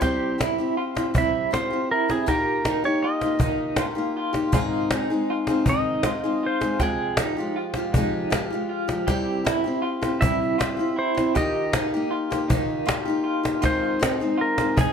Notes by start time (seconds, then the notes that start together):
0.01 C3 G3 C4 E4 G4 C5, cajon bass, cajon slap
0.38 G3 C4 E4 G4, cajon slap
0.58 C4 E4 G4
0.77 F4
0.95 C4 E4 G4, cajon slap
1.14 C3 G3 C4 E4 G4, cajon bass
1.18 E5
1.35 cajon slap
1.51 G3 C4 E4 F4 G4 C5, cajon slap
1.71 C4 E4 G4
1.91 E4 A#4
2.08 C4 E4 G4 G#4, cajon slap
2.26 A#2 D#3 A#3 D#4 G4 A#4, cajon bass, cajon slap
2.64 D#3 A#3 D#4 G4, cajon slap
2.84 A#3 D#4 G4 C#5
3.03 F4 D#5
3.21 D#4 G4, cajon slap
3.25 A#3
3.39 A#2 D#3 A#3 D#4 G4, cajon bass
3.58 cajon slap
3.76 D#3 A#3 D#4 F4 G4, cajon slap
3.95 A#3 D#4 G4
4.17 F4
4.33 A#3 D#4 G4, cajon slap
4.52 G#2 D#3 G#3 C4 D#4 F4 G#4, cajon bass
4.91 G#3 C4 D#4, cajon slap
4.95 G#4
5.10 G#3 C4 D#4 G#4, cajon slap
5.30 F4
5.47 G#3 C4 D#4 G#4, cajon slap
5.65 G#2 D#3 G#3 C4 D#4 G#4 D#5, cajon bass
6.03 G#3 C4 D#4 F4 G#4, cajon slap
6.24 G#3 C4 D#4 G#4
6.43 F4 C5
6.61 G#3 C4 D#4 G#4, cajon slap
6.80 F2 C3 F3 G#3 F4 G#4 G5, cajon bass, cajon slap
7.17 F3 G#3 D#4 F4 G4, cajon slap
7.37 F3 G#3 F4 G4
7.56 F4
7.74 F4 G4, cajon slap
7.79 F3 G#3
7.93 F2 C3 F3 G#3 D#4 F4 G4, cajon bass
8.13 cajon slap
8.30 F3 G#3 F4 G4, cajon slap
8.50 G#3 F4 G4
8.55 F3
8.69 F4
8.88 G#3 F4 G4, cajon slap
8.92 F3
9.07 C3 G3 C4 E4 G4, cajon bass, cajon slap
9.45 G3 C4 E4 G4, cajon slap
9.64 C4 E4 G4
9.82 F4
10.01 C4 E4 G4, cajon slap
10.21 C3 G3 C4 E4 G4 E5, cajon bass
10.42 cajon slap
10.58 G3 C4 E4 F4 G4, cajon slap
10.77 C4 E4 G4
10.96 E4 C5
11.15 C4 E4 G4, cajon slap
11.35 A#2 D#3 A#3 D#4 G4 D#5, cajon bass, cajon slap
11.72 D#3 A#3 D#4, cajon slap
11.77 G4
11.94 A#3 D#4 G4
12.11 F4
12.30 A#3 D#4 G4, cajon slap
12.48 A#2 D#3 A#3 D#4 G4, cajon bass
12.69 cajon slap
12.86 D#3 A#3 D#4 F4 G4, cajon slap
13.05 D#4 G4
13.10 A#3
13.24 F4
13.43 A#3 D#4 G4, cajon slap
13.62 G#2 D#3 G#3 C4 D#4 F4 G#4 C5, cajon bass, cajon slap
13.99 G#3 C4 D#4 G#4, cajon slap
14.20 G#3 C4 D#4 G#4
14.38 F4 A#4
14.58 G#3 C4 D#4 G#4, cajon slap
14.76 G#2 D#3 G#3 C4 D#4 G#4, cajon bass
14.81 G#5